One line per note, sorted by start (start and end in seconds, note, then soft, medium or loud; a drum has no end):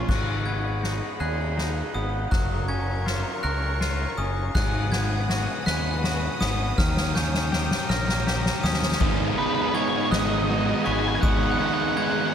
0.09 1.00 G#1 medium
0.09 1.95 G#2 medium
0.09 2.30 G#4 medium
0.09 2.31 D#5 medium
0.09 2.30 F#5 medium
0.09 2.30 B5 medium
0.09 0.46 F#6 medium
0.09 kick loud
0.09 snare soft
0.09 crash loud
0.46 1.94 B3 medium
0.46 1.20 G#6 medium
0.46 ride medium
0.83 1.56 D#4 medium
0.83 snare medium
0.83 ride medium
1.20 1.81 D#2 medium
1.20 2.32 G#4 medium
1.20 1.95 F#6 medium
1.20 ride medium
1.58 2.32 D#4 medium
1.58 snare medium
1.58 ride medium
1.94 2.26 G#1 medium
1.94 2.32 B3 medium
1.94 2.32 D#6 medium
1.94 ride medium
2.31 3.23 F#1 medium
2.31 4.18 F#3 medium
2.31 4.54 A#4 medium
2.31 4.53 C#5 medium
2.31 4.53 A#5 medium
2.31 4.53 C#6 medium
2.31 2.69 F#6 medium
2.31 kick loud
2.31 snare medium
2.31 ride medium
2.68 4.17 C#4 medium
2.68 3.43 G#6 medium
2.68 ride medium
3.06 3.80 F4 medium
3.06 snare medium
3.06 ride medium
3.43 4.05 C#2 medium
3.43 4.55 A#4 medium
3.43 4.18 F#6 medium
3.43 ride medium
3.81 4.55 F4 medium
3.81 snare medium
3.81 ride medium
4.18 4.49 F#1 medium
4.18 4.55 C#4 medium
4.18 4.55 D#6 medium
4.18 ride medium
4.55 5.46 G#1 medium
4.55 6.41 G#2 medium
4.55 6.76 B4 medium
4.55 6.76 F#5 medium
4.55 6.76 G#5 medium
4.55 8.96 D#6 medium
4.55 4.92 F#6 medium
4.55 kick loud
4.55 snare medium
4.55 crash medium
4.92 6.40 B3 medium
4.92 5.66 G#6 medium
4.92 snare medium
4.92 ride medium
5.29 6.03 F#4 medium
5.29 snare medium
5.29 ride medium
5.66 6.28 D#2 medium
5.66 6.78 B4 medium
5.66 6.41 F#6 medium
5.66 snare medium
5.66 ride medium
6.04 6.78 F#4 medium
6.04 snare medium
6.04 ride medium
6.41 6.72 G#1 loud
6.41 6.78 B3 medium
6.41 6.78 D#6 medium
6.41 snare medium
6.41 ride medium
6.78 7.69 D#2 loud
6.78 8.63 D#3 medium
6.78 8.98 C#5 medium
6.78 8.98 G5 medium
6.78 8.98 A#5 medium
6.78 7.15 F6 medium
6.78 kick loud
6.78 snare loud
6.97 snare loud
7.15 8.63 C#4 medium
7.15 7.89 G6 medium
7.15 snare loud
7.34 snare medium
7.52 8.26 G4 medium
7.52 snare loud
7.71 snare loud
7.89 8.50 A#1 medium
7.89 9.01 A#4 medium
7.89 8.63 F6 medium
7.89 snare loud
8.09 snare loud
8.27 9.01 G4 medium
8.27 snare loud
8.46 snare loud
8.64 8.94 D#2 medium
8.64 9.01 C#4 medium
8.64 8.99 D#6 medium
8.64 snare loud
8.73 snare loud
8.82 snare loud
8.92 snare loud
9.01 9.31 G#1 loud
9.01 9.38 G#2 loud
9.01 9.37 D#3 loud
9.01 9.74 G#3 medium
9.01 9.38 G#3 loud
9.01 9.39 B3 loud
9.01 9.39 D#4 loud
9.01 12.34 G#4 medium
9.01 12.34 D#5 medium
9.01 12.34 F#5 medium
9.01 12.34 B5 medium
9.01 9.75 D#6 loud
9.01 kick loud
9.01 ride loud
9.38 9.75 G#2 medium
9.38 9.75 D#3 medium
9.38 9.76 G#3 medium
9.38 9.76 B3 medium
9.38 10.11 D#4 medium
9.38 9.76 D#4 loud
9.38 9.46 B4 medium
9.38 ride medium
9.46 9.53 B4 medium
9.54 9.61 B4 medium
9.62 9.68 B4 medium
9.69 9.76 B4 medium
9.74 10.11 G#2 medium
9.74 10.11 D#3 medium
9.74 11.22 G#3 medium
9.74 10.12 G#3 medium
9.74 10.12 B3 medium
9.74 10.12 D#4 medium
9.74 9.81 C#5 medium
9.74 10.12 G#6 medium
9.74 ride medium
9.82 9.89 C#5 medium
9.89 9.97 C#5 medium
9.97 10.04 C#5 medium
10.04 10.11 C#5 medium
10.11 10.72 G#1 loud
10.11 10.48 G#2 medium
10.11 10.49 D#3 medium
10.11 10.49 G#3 medium
10.11 10.49 B3 loud
10.11 11.59 D#4 medium
10.11 10.50 D#4 loud
10.11 10.19 D#5 loud
10.11 10.86 F#6 medium
10.11 snare loud
10.11 ride loud
10.19 10.26 D#5 medium
10.26 10.34 D#5 medium
10.34 10.42 D#5 medium
10.42 10.50 D#5 loud
10.49 10.84 G#2 medium
10.49 10.85 D#3 medium
10.49 10.85 G#3 medium
10.49 10.85 B3 loud
10.49 10.86 D#4 loud
10.49 12.34 F#4 medium
10.49 10.58 D#5 medium
10.49 ride medium
10.58 10.66 D#5 medium
10.66 10.74 D#5 medium
10.74 10.82 D#5 medium
10.84 11.17 G#1 medium
10.84 11.21 G#2 medium
10.84 11.22 D#3 medium
10.84 11.22 G#3 medium
10.84 11.22 B3 medium
10.84 11.23 D#4 loud
10.84 12.34 B4 medium
10.84 10.92 G#5 loud
10.84 11.23 C#6 medium
10.84 ride medium
10.92 10.99 G#5 medium
10.99 11.07 G#5 medium
11.08 11.15 G#5 medium
11.15 11.20 G#5 medium
11.21 11.53 G#1 loud
11.21 11.58 G#2 loud
11.21 11.58 D#3 loud
11.21 11.96 G#3 medium
11.21 11.59 G#3 loud
11.21 11.59 B3 loud
11.21 11.59 D#4 loud
11.21 11.28 F#5 loud
11.21 11.97 D#6 loud
11.21 kick loud
11.21 ride loud
11.29 11.36 F#5 medium
11.37 11.43 F#5 medium
11.43 11.50 F#5 medium
11.51 11.58 F#5 medium
11.59 11.95 G#2 medium
11.59 11.96 D#3 medium
11.59 11.96 G#3 medium
11.59 11.96 B3 loud
11.59 12.33 D#4 medium
11.59 11.97 D#4 loud
11.59 11.66 F#5 medium
11.59 ride medium
11.66 11.73 F#5 medium
11.74 11.81 F#5 medium
11.81 11.88 F#5 medium
11.88 11.96 F#5 medium
11.96 12.32 G#2 medium
11.96 12.32 D#3 medium
11.96 12.34 G#3 medium
11.96 12.33 G#3 medium
11.96 12.33 B3 loud
11.96 12.33 D#4 medium
11.96 12.04 F#5 medium
11.96 12.34 G#6 medium
11.96 ride medium
12.04 12.11 F#5 medium
12.12 12.19 F#5 medium
12.19 12.26 F#5 medium
12.26 12.34 F#5 medium